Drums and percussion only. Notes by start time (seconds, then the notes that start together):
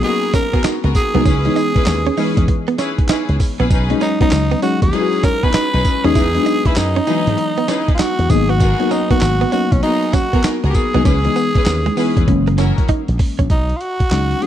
0.03 closed hi-hat
0.23 closed hi-hat
0.33 kick, snare, closed hi-hat, tambourine
0.53 kick, closed hi-hat
0.64 snare, clap, closed hi-hat, tambourine
0.84 closed hi-hat
0.95 kick, closed hi-hat, tambourine
1.15 closed hi-hat
1.25 kick, closed hi-hat, tambourine
1.45 closed hi-hat
1.56 closed hi-hat, tambourine
1.76 kick, closed hi-hat
1.86 snare, clap, closed hi-hat, tambourine
2.06 closed hi-hat
2.17 open hi-hat, tambourine
2.37 kick, closed hi-hat
2.48 kick, closed hi-hat
2.68 closed hi-hat
2.78 snare, closed hi-hat, tambourine
2.98 kick, closed hi-hat
3.09 snare, clap, closed hi-hat, tambourine
3.29 closed hi-hat
3.40 kick, open hi-hat, tambourine
3.60 closed hi-hat
3.70 kick, closed hi-hat, tambourine
3.90 closed hi-hat
4.01 closed hi-hat, tambourine
4.21 kick, closed hi-hat
4.31 snare, clap, closed hi-hat, tambourine
4.51 closed hi-hat
4.62 closed hi-hat, tambourine
4.82 kick, closed hi-hat
4.93 closed hi-hat
5.13 closed hi-hat
5.23 kick, snare, closed hi-hat, tambourine
5.43 kick, closed hi-hat
5.54 snare, clap, closed hi-hat, tambourine
5.74 closed hi-hat
5.85 kick, closed hi-hat, tambourine
6.04 closed hi-hat
6.15 kick, closed hi-hat, tambourine
6.35 closed hi-hat
6.46 closed hi-hat, tambourine
6.65 kick, closed hi-hat
6.76 snare, clap, closed hi-hat, tambourine
6.96 closed hi-hat
7.07 closed hi-hat, tambourine
7.27 closed hi-hat
7.38 closed hi-hat
7.58 closed hi-hat
7.68 snare, closed hi-hat, tambourine
7.88 kick, closed hi-hat
7.99 snare, clap, closed hi-hat, tambourine
8.19 closed hi-hat
8.30 kick, closed hi-hat, tambourine
8.50 closed hi-hat
8.60 kick, closed hi-hat, tambourine
8.80 closed hi-hat
8.91 closed hi-hat, tambourine
9.10 kick, closed hi-hat
9.21 snare, clap, closed hi-hat, tambourine
9.41 closed hi-hat
9.52 closed hi-hat, tambourine
9.72 kick, closed hi-hat
9.83 closed hi-hat
10.03 closed hi-hat
10.13 kick, snare, closed hi-hat, tambourine
10.33 kick, closed hi-hat
10.44 snare, clap, closed hi-hat, tambourine
10.64 closed hi-hat
10.74 kick, closed hi-hat, tambourine
10.94 closed hi-hat
11.05 kick, closed hi-hat, tambourine
11.25 closed hi-hat
11.36 closed hi-hat, tambourine
11.55 kick, closed hi-hat
11.66 snare, clap, closed hi-hat, tambourine
11.86 closed hi-hat
11.97 open hi-hat, tambourine
12.17 kick, closed hi-hat
12.28 kick, closed hi-hat
12.47 closed hi-hat
12.58 snare, closed hi-hat, tambourine
12.78 kick, closed hi-hat
12.88 kick, closed hi-hat
13.08 closed hi-hat
13.19 kick, open hi-hat
13.39 kick, closed hi-hat
13.50 kick, closed hi-hat
13.69 closed hi-hat
13.81 closed hi-hat
14.00 kick, closed hi-hat
14.11 snare, clap, closed hi-hat
14.31 closed hi-hat
14.42 closed hi-hat